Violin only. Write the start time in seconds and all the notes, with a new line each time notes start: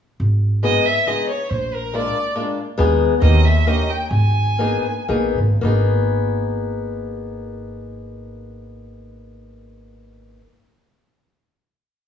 0.64 D#5
0.86 E5
1.07 D#5
1.30 C#5
1.50 C5
1.74 A#4
1.95 D5
3.22 D#5
3.45 E5
3.67 D#5
3.90 G5
4.10 G#5